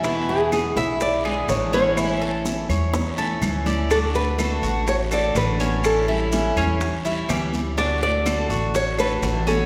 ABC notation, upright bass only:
X:1
M:4/4
L:1/8
Q:1/4=124
K:D
V:1 name="Upright bass" clef=bass
E,,3 B,,,3 A,,,2- | A,,,3 E,,3 D,,2- | D,,3 A,,,3 A,,,2- | A,,,3 E,,3 D,,2- |
D,,3 A,,,3 A,,,2 |]